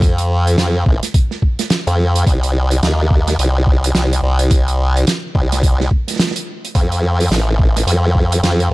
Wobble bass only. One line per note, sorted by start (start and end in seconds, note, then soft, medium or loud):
0.00 0.56 F2 loud
0.58 0.85 F2 medium
0.86 1.00 A1 loud
1.87 2.25 F2 loud
2.27 2.81 C2 loud
2.83 3.37 D#2 medium
3.39 3.93 C2 loud
3.95 4.21 C2 medium
4.23 5.05 C2 loud
5.35 5.89 C2 loud
6.75 7.29 F2 loud
7.31 7.85 A1 loud
7.87 8.41 F2 loud
8.43 8.69 F2 loud